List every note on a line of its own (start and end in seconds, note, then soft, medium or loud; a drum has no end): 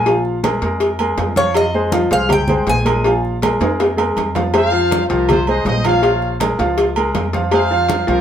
0.00 0.56 A#1 medium
0.00 0.22 G#5 loud
0.06 0.37 F3 medium
0.06 0.37 F4 medium
0.06 0.37 F5 medium
0.06 cowbell loud
0.06 high conga soft
0.06 low agogo medium
0.25 high conga soft
0.43 0.59 G#3 medium
0.43 0.59 G#4 medium
0.43 0.59 A#4 medium
0.43 cowbell medium
0.43 high conga loud
0.43 low timbale medium
0.43 low agogo loud
0.62 1.14 F2 loud
0.62 0.93 G#3 medium
0.62 0.94 G#4 medium
0.62 0.93 A#4 medium
0.62 cowbell medium
0.62 high conga soft
0.80 cowbell loud
0.80 high conga soft
0.80 low agogo medium
0.99 1.30 G#3 medium
0.99 1.30 G#4 medium
0.99 1.31 A#4 medium
0.99 high conga soft
0.99 low agogo loud
1.18 2.05 F2 loud
1.18 cowbell medium
1.18 high conga medium
1.18 low timbale medium
1.18 low agogo medium
1.36 1.67 F3 loud
1.36 1.68 F4 loud
1.36 1.55 C#5 loud
1.36 1.68 F5 medium
1.36 cowbell medium
1.36 high conga medium
1.54 2.08 D#5 medium
1.54 cowbell loud
1.54 high conga soft
1.54 low agogo loud
1.74 1.90 G#3 medium
1.74 1.90 G#4 medium
1.74 1.90 C5 medium
1.74 high conga soft
1.92 2.07 F3 medium
1.92 2.08 F4 medium
1.92 2.08 F5 medium
1.92 cowbell medium
1.92 high conga loud
1.92 low timbale medium
1.92 low agogo medium
2.11 2.63 C2 loud
2.11 2.42 G#3 medium
2.11 2.42 G#4 medium
2.11 2.42 C5 medium
2.11 2.30 F5 loud
2.11 cowbell medium
2.11 high conga soft
2.29 2.66 G5 medium
2.29 cowbell loud
2.29 high conga soft
2.29 low conga medium
2.29 low agogo loud
2.48 2.80 G#3 medium
2.48 2.80 G#4 medium
2.48 2.80 C5 medium
2.48 high conga soft
2.48 low conga medium
2.48 low agogo medium
2.67 3.55 A#1 loud
2.67 3.21 G#5 medium
2.67 cowbell medium
2.67 high conga medium
2.67 low timbale medium
2.85 3.01 G#3 medium
2.85 3.01 G#4 medium
2.85 3.01 A#4 medium
2.85 cowbell medium
2.85 high conga medium
2.85 low agogo loud
3.04 3.35 F3 medium
3.04 3.36 F4 medium
3.04 3.36 F5 medium
3.04 cowbell loud
3.04 high conga soft
3.04 low agogo medium
3.25 high conga soft
3.42 3.58 G#3 medium
3.42 3.58 G#4 medium
3.42 3.58 A#4 medium
3.42 cowbell medium
3.42 high conga loud
3.42 low timbale medium
3.42 low agogo loud
3.61 4.13 F2 loud
3.61 3.91 G#3 medium
3.61 3.92 G#4 medium
3.61 3.92 A#4 medium
3.61 cowbell medium
3.61 high conga soft
3.61 high timbale medium
3.80 cowbell loud
3.80 high conga soft
3.80 low timbale loud
3.80 low agogo medium
3.97 4.28 G#3 medium
3.97 4.28 G#4 medium
3.97 4.29 A#4 medium
3.97 high conga soft
3.97 low timbale medium
3.97 low agogo loud
4.16 5.04 F2 loud
4.16 cowbell medium
4.16 high conga medium
4.16 low agogo medium
4.35 4.50 F3 medium
4.35 4.50 F4 medium
4.35 4.51 F5 loud
4.35 cowbell medium
4.35 high conga medium
4.35 low timbale loud
4.54 4.69 G#3 medium
4.54 4.69 G#4 medium
4.54 4.70 C5 medium
4.54 5.03 C5 medium
4.54 5.02 F5 loud
4.54 cowbell loud
4.54 high conga soft
4.54 low agogo loud
4.72 5.03 F3 medium
4.72 5.03 F4 medium
4.72 5.03 F5 medium
4.72 high conga soft
4.91 cowbell medium
4.91 high conga medium
4.91 low timbale medium
4.91 low agogo medium
5.05 5.10 C5 medium
5.10 5.62 C2 loud
5.10 5.40 F3 medium
5.10 5.41 F4 loud
5.10 5.30 G4 medium
5.10 5.29 A#4 medium
5.10 5.41 F5 medium
5.10 cowbell medium
5.10 high conga soft
5.29 5.46 G#4 medium
5.29 5.46 C5 loud
5.29 cowbell loud
5.29 high conga soft
5.29 low conga medium
5.29 low agogo loud
5.47 5.78 G#3 medium
5.47 5.78 G#4 medium
5.47 5.64 C5 medium
5.47 5.79 C5 medium
5.47 5.64 D#5 loud
5.47 high conga soft
5.47 low agogo medium
5.65 6.53 A#1 loud
5.65 5.83 C5 medium
5.65 5.83 D#5 loud
5.65 cowbell medium
5.65 high conga medium
5.65 low timbale medium
5.84 6.00 F3 medium
5.84 6.00 F4 loud
5.84 6.37 C#5 medium
5.84 6.00 F5 medium
5.84 6.37 F5 loud
5.84 cowbell medium
5.84 high conga medium
5.84 low agogo loud
6.02 6.33 F3 medium
6.02 6.33 F4 medium
6.02 6.33 F5 medium
6.02 cowbell loud
6.02 high conga soft
6.02 low agogo medium
6.22 high conga soft
6.40 6.56 G#3 medium
6.40 6.56 G#4 medium
6.40 6.56 A#4 medium
6.40 cowbell medium
6.40 high conga loud
6.40 low timbale medium
6.40 low agogo loud
6.59 7.11 C#2 loud
6.59 6.89 F3 medium
6.59 6.89 F4 loud
6.59 6.90 F5 loud
6.59 cowbell medium
6.59 high conga soft
6.78 cowbell loud
6.78 high conga soft
6.78 low agogo medium
6.96 7.27 G#3 medium
6.96 7.27 G#4 medium
6.96 7.27 A#4 medium
6.96 high conga soft
6.96 low agogo loud
7.15 8.02 F2 loud
7.15 cowbell medium
7.15 high conga medium
7.15 low timbale medium
7.15 low agogo medium
7.33 7.49 F3 loud
7.33 7.49 F4 medium
7.33 7.49 F5 loud
7.33 cowbell medium
7.33 high conga medium
7.51 7.68 G#3 medium
7.51 7.68 G#4 medium
7.51 8.05 C5 medium
7.51 7.68 C5 medium
7.51 8.05 F5 loud
7.51 cowbell loud
7.51 high conga soft
7.51 low agogo loud
7.71 8.01 F3 medium
7.71 8.02 F4 loud
7.71 8.02 F5 loud
7.71 high conga soft
7.89 cowbell medium
7.89 high conga loud
7.89 low timbale medium
7.89 low agogo medium
8.07 8.21 C2 loud
8.07 8.21 F3 loud
8.07 8.21 F4 loud
8.07 8.21 G4 medium
8.07 8.21 A#4 medium
8.07 8.21 F5 loud
8.07 cowbell medium
8.07 high conga soft